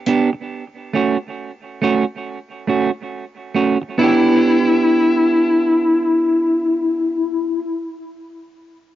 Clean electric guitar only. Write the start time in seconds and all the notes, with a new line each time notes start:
0.07 B3 D4 G4
0.33 muted clean electric guitar stroke
0.93 A3 C#4 F#4
1.82 A3 C#4 F#4
2.68 A3 C#4 F#4
3.55 A3 C#4 F#4
3.82 muted clean electric guitar stroke
3.98 B3 D4
4.03 G4